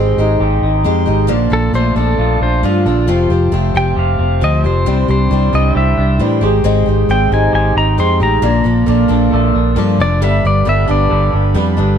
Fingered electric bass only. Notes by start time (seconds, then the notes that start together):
Already playing: G#1
0.17 G#1
0.40 G#1
0.62 G#1
0.84 F2
1.07 G#1
1.29 A#1
1.51 A#1
1.73 A#1
1.96 A#1
2.18 A#1
2.40 A#1
2.63 G2
2.86 A#1
3.08 F1
3.30 F1
3.52 F1
3.75 F1
3.97 F1
4.19 F1
4.42 D2
4.64 F1
4.86 C2
5.08 C2
5.31 C2
5.53 C2
5.75 C2
5.98 C2
6.19 A2
6.41 G#1
6.64 G#1
6.87 G#1
7.08 G#1
7.31 G#1
7.53 G#1
7.75 G#1
7.98 F2
8.20 A1
8.42 A#1
8.65 A#1
8.87 A#1
9.09 A#1
9.33 A#1
9.55 A#1
9.76 G2
9.98 F1
10.21 G1
10.44 G1
10.67 G1
10.89 G1
11.11 G1
11.33 G1
11.54 F2
11.78 G1